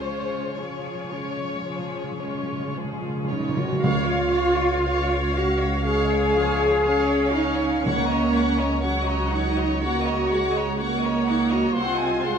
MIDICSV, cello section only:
0, 0, Header, 1, 2, 480
1, 0, Start_track
1, 0, Key_signature, -5, "major"
1, 0, Tempo, 1090909
1, 1687, Time_signature, 4, 2, 24, 8
1, 1687, Tempo, 1023891
1, 2167, Tempo, 991736
1, 4567, Tempo, 966184
1, 5842, End_track
2, 0, Start_track
2, 0, Title_t, "Cello section"
2, 0, Program_c, 0, 48
2, 0, Note_on_c, 0, 49, 36
2, 201, Note_off_c, 0, 49, 0
2, 256, Note_on_c, 0, 53, 42
2, 958, Note_off_c, 0, 53, 0
2, 980, Note_on_c, 0, 54, 38
2, 1210, Note_off_c, 0, 54, 0
2, 1218, Note_on_c, 0, 56, 38
2, 1450, Note_off_c, 0, 56, 0
2, 1456, Note_on_c, 0, 63, 52
2, 1565, Note_off_c, 0, 63, 0
2, 1578, Note_on_c, 0, 66, 67
2, 1690, Note_off_c, 0, 66, 0
2, 1693, Note_on_c, 0, 65, 97
2, 2411, Note_off_c, 0, 65, 0
2, 2414, Note_on_c, 0, 66, 81
2, 2653, Note_off_c, 0, 66, 0
2, 2657, Note_on_c, 0, 68, 93
2, 3376, Note_on_c, 0, 63, 78
2, 3379, Note_off_c, 0, 68, 0
2, 3613, Note_off_c, 0, 63, 0
2, 3618, Note_on_c, 0, 61, 69
2, 4330, Note_off_c, 0, 61, 0
2, 4332, Note_on_c, 0, 63, 71
2, 4563, Note_off_c, 0, 63, 0
2, 4567, Note_on_c, 0, 66, 73
2, 5052, Note_off_c, 0, 66, 0
2, 5293, Note_on_c, 0, 63, 70
2, 5404, Note_off_c, 0, 63, 0
2, 5414, Note_on_c, 0, 66, 71
2, 5530, Note_on_c, 0, 65, 87
2, 5532, Note_off_c, 0, 66, 0
2, 5842, Note_off_c, 0, 65, 0
2, 5842, End_track
0, 0, End_of_file